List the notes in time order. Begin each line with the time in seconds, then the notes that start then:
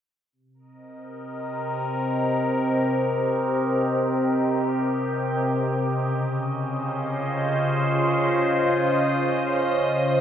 0.33 C3
0.54 A#4
0.59 D#5
0.71 C4
0.99 G4
5.84 C#3
5.98 C#4
6.43 C5
6.50 F4